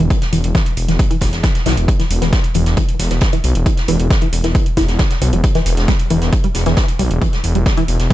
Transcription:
0.10 kick loud
0.10 closed hi-hat medium
0.22 snare medium
0.22 closed hi-hat medium
0.32 0.42 E1 loud
0.32 0.39 E3 medium
0.32 closed hi-hat medium
0.32 open hi-hat loud
0.44 0.53 E1 medium
0.44 closed hi-hat medium
0.55 0.61 E3 loud
0.55 kick loud
0.55 snare loud
0.55 closed hi-hat medium
0.66 closed hi-hat medium
0.77 0.86 E1 medium
0.77 closed hi-hat medium
0.77 open hi-hat medium
0.88 0.97 E1 medium
0.88 0.95 E3 medium
0.88 snare soft
0.88 closed hi-hat medium
0.99 kick loud
0.99 closed hi-hat medium
1.11 1.17 E3 loud
1.11 closed hi-hat medium
1.21 1.31 E1 medium
1.21 kick medium
1.21 snare soft
1.21 closed hi-hat medium
1.21 open hi-hat loud
1.32 1.42 E1 medium
1.32 snare soft
1.32 closed hi-hat medium
1.43 1.50 E3 medium
1.43 kick loud
1.43 snare loud
1.43 closed hi-hat medium
1.55 snare medium
1.55 closed hi-hat medium
1.65 1.75 B1 medium
1.65 1.72 E3 loud
1.65 snare loud
1.65 closed hi-hat medium
1.65 open hi-hat medium
1.77 1.86 E1 medium
1.77 closed hi-hat medium
1.77 closed hi-hat soft
1.88 kick loud
1.88 closed hi-hat medium
1.99 2.06 E3 medium
1.99 snare soft
1.99 closed hi-hat medium
2.10 2.20 E1 loud
2.10 closed hi-hat medium
2.10 open hi-hat loud
2.22 2.31 E1 medium
2.22 2.28 E3 loud
2.22 snare soft
2.22 closed hi-hat medium
2.33 kick loud
2.33 snare loud
2.33 closed hi-hat medium
2.44 closed hi-hat medium
2.54 2.64 E1 loud
2.54 2.61 E3 medium
2.54 closed hi-hat medium
2.54 open hi-hat medium
2.66 2.75 E1 medium
2.66 snare soft
2.66 closed hi-hat medium
2.77 2.83 E3 loud
2.77 kick loud
2.77 closed hi-hat loud
2.77 closed hi-hat medium
2.89 closed hi-hat medium
2.99 3.09 E1 medium
2.99 snare soft
2.99 closed hi-hat medium
2.99 open hi-hat loud
3.10 3.20 E1 medium
3.10 3.17 E3 medium
3.10 snare soft
3.10 closed hi-hat medium
3.21 kick loud
3.21 snare loud
3.21 closed hi-hat medium
3.32 3.39 E3 loud
3.32 closed hi-hat soft
3.32 closed hi-hat medium
3.44 3.53 B1 medium
3.44 closed hi-hat medium
3.44 open hi-hat medium
3.55 3.64 E1 medium
3.55 closed hi-hat medium
3.66 3.72 E3 medium
3.66 kick loud
3.66 closed hi-hat medium
3.77 snare medium
3.77 closed hi-hat soft
3.88 3.97 E1 loud
3.88 3.95 E3 loud
3.88 closed hi-hat medium
3.88 open hi-hat loud
4.00 4.08 E1 medium
4.00 closed hi-hat medium
4.10 kick loud
4.10 snare loud
4.10 closed hi-hat medium
4.22 4.28 E3 medium
4.22 closed hi-hat medium
4.33 4.42 E1 loud
4.33 closed hi-hat medium
4.33 open hi-hat medium
4.44 4.53 E1 medium
4.44 4.50 E3 medium
4.44 snare soft
4.44 closed hi-hat medium
4.55 kick loud
4.55 closed hi-hat medium
4.66 closed hi-hat soft
4.77 4.86 E1 medium
4.77 4.87 E4 medium
4.77 kick medium
4.77 snare soft
4.77 closed hi-hat medium
4.77 open hi-hat loud
4.88 4.97 E1 medium
4.88 snare medium
4.88 closed hi-hat medium
4.99 5.03 D3 medium
4.99 kick loud
4.99 snare loud
4.99 closed hi-hat medium
5.10 snare medium
5.10 closed hi-hat soft
5.22 5.31 B1 medium
5.22 5.28 C4 medium
5.22 closed hi-hat medium
5.22 open hi-hat medium
5.33 5.42 E1 medium
5.33 5.37 F#3 medium
5.33 closed hi-hat medium
5.44 kick loud
5.44 closed hi-hat medium
5.55 5.61 E3 loud
5.55 snare soft
5.55 closed hi-hat medium
5.66 5.75 E1 loud
5.66 closed hi-hat medium
5.66 open hi-hat loud
5.77 5.86 E1 medium
5.77 snare medium
5.77 closed hi-hat soft
5.88 5.92 G3 medium
5.88 kick loud
5.88 snare loud
5.88 closed hi-hat medium
6.00 closed hi-hat medium
6.10 6.19 E1 loud
6.10 6.17 E3 loud
6.10 closed hi-hat medium
6.10 open hi-hat medium
6.21 6.31 E1 medium
6.21 snare medium
6.21 closed hi-hat soft
6.33 kick loud
6.33 closed hi-hat medium
6.44 6.48 G3 medium
6.44 closed hi-hat soft
6.54 6.64 E1 medium
6.54 snare soft
6.54 closed hi-hat medium
6.54 open hi-hat loud
6.66 6.75 E1 medium
6.66 6.72 E3 loud
6.66 snare soft
6.66 closed hi-hat soft
6.77 kick loud
6.77 snare loud
6.77 closed hi-hat medium
6.88 closed hi-hat soft
6.99 7.08 B1 medium
6.99 7.03 G3 medium
6.99 closed hi-hat medium
6.99 open hi-hat medium
7.11 7.19 E1 medium
7.11 closed hi-hat soft
7.22 7.28 E3 loud
7.22 kick loud
7.22 closed hi-hat medium
7.33 snare medium
7.33 closed hi-hat soft
7.44 7.53 E1 loud
7.44 closed hi-hat medium
7.44 open hi-hat loud
7.55 7.64 E1 medium
7.55 7.59 G3 medium
7.55 closed hi-hat medium
7.66 kick loud
7.66 snare loud
7.66 closed hi-hat medium
7.77 7.84 E3 loud
7.77 closed hi-hat soft
7.88 7.97 E1 loud
7.88 closed hi-hat medium
7.88 open hi-hat medium
7.99 8.08 E1 medium
7.99 snare soft
7.99 closed hi-hat soft
8.10 kick loud
8.10 closed hi-hat medium

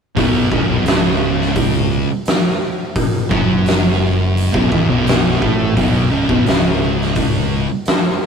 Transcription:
0.17 0.49 B0 loud
0.17 0.50 B1 medium
0.17 0.50 B2 loud
0.17 kick loud
0.17 open hi-hat medium
0.51 0.67 C#1 medium
0.51 0.66 C#2 medium
0.51 0.67 C#3 loud
0.51 kick loud
0.67 0.82 B0 medium
0.67 0.84 B1 medium
0.67 0.84 B2 medium
0.83 2.03 C#1 medium
0.83 2.07 C#2 medium
0.83 2.07 C#3 loud
0.83 open hi-hat medium
0.88 snare loud
1.41 snare soft
1.56 kick loud
1.56 open hi-hat medium
2.26 snare loud
2.26 open hi-hat medium
2.96 kick loud
2.96 open hi-hat medium
3.30 4.49 F#1 medium
3.30 4.51 F#2 loud
3.30 4.52 F#3 loud
3.30 kick loud
3.66 snare loud
3.66 open hi-hat medium
4.37 open hi-hat medium
4.54 4.70 B0 loud
4.54 4.70 B1 medium
4.54 4.70 B2 medium
4.54 kick loud
4.71 4.87 E1 medium
4.71 4.88 E2 medium
4.71 4.88 E3 loud
4.71 kick loud
4.88 5.36 B0 medium
4.88 5.40 B1 loud
4.88 5.40 B2 loud
5.07 snare loud
5.07 open hi-hat medium
5.42 5.73 A1 loud
5.42 5.75 A2 loud
5.42 5.75 A3 loud
5.42 kick loud
5.77 6.09 B0 loud
5.77 6.10 B1 loud
5.77 6.10 B2 loud
5.77 kick loud
5.77 open hi-hat medium
6.11 6.27 C#1 loud
6.11 6.27 C#2 loud
6.11 6.27 C#3 loud
6.28 6.44 B0 medium
6.28 6.44 B1 medium
6.28 6.45 B2 medium
6.28 kick loud
6.45 7.64 C#1 medium
6.45 7.66 C#2 loud
6.45 7.67 C#3 loud
6.45 snare loud
6.45 open hi-hat medium
7.01 snare soft
7.16 kick loud
7.16 open hi-hat medium
7.86 snare loud
7.86 open hi-hat medium

